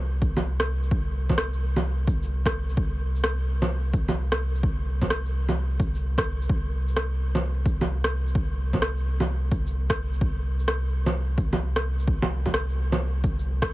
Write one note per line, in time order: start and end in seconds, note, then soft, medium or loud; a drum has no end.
0.00 6.48 C2 medium
0.22 kick loud
0.22 shaker soft
0.37 low bongo medium
0.37 shaker medium
0.60 cross-stick loud
0.60 shaker soft
0.83 shaker medium
0.91 kick loud
1.30 kick medium
1.30 low bongo soft
1.30 shaker medium
1.38 cross-stick loud
1.53 shaker soft
1.76 low bongo medium
1.76 shaker medium
2.07 kick loud
2.07 shaker soft
2.23 shaker medium
2.46 kick loud
2.46 cross-stick loud
2.46 shaker soft
2.70 shaker medium
2.77 kick loud
3.16 shaker medium
3.24 cross-stick loud
3.62 low bongo medium
3.62 shaker medium
3.94 kick loud
3.94 shaker soft
4.08 low bongo soft
4.08 shaker medium
4.32 cross-stick loud
4.32 shaker soft
4.55 shaker medium
4.63 kick loud
5.02 kick medium
5.02 low bongo soft
5.02 shaker medium
5.10 cross-stick loud
5.25 shaker soft
5.49 low bongo medium
5.49 shaker medium
5.80 kick loud
5.80 shaker soft
5.95 shaker medium
6.18 kick loud
6.18 cross-stick loud
6.18 shaker soft
6.42 shaker medium
6.50 13.73 C2 medium
6.50 kick loud
6.88 shaker medium
6.97 cross-stick loud
7.35 low bongo medium
7.35 shaker medium
7.66 kick loud
7.66 shaker soft
7.81 low bongo medium
7.81 shaker medium
8.04 cross-stick loud
8.04 shaker soft
8.28 shaker medium
8.35 kick loud
8.73 kick medium
8.73 low bongo soft
8.73 shaker medium
8.82 cross-stick loud
8.97 shaker soft
9.20 low bongo medium
9.20 shaker medium
9.52 kick loud
9.52 shaker soft
9.67 shaker medium
9.90 kick loud
9.90 cross-stick loud
9.90 shaker soft
10.13 shaker medium
10.21 kick loud
10.60 shaker medium
10.68 cross-stick loud
11.06 low bongo medium
11.06 shaker medium
11.38 kick loud
11.38 shaker soft
11.53 low bongo medium
11.53 shaker medium
11.76 cross-stick loud
11.76 shaker soft
11.99 shaker medium
12.08 kick loud
12.22 low bongo medium
12.46 kick medium
12.46 low bongo soft
12.46 shaker medium
12.54 cross-stick loud
12.69 shaker soft
12.92 low bongo medium
12.92 shaker medium
13.24 kick loud
13.24 shaker soft
13.39 shaker medium
13.62 kick loud
13.62 cross-stick loud
13.62 shaker soft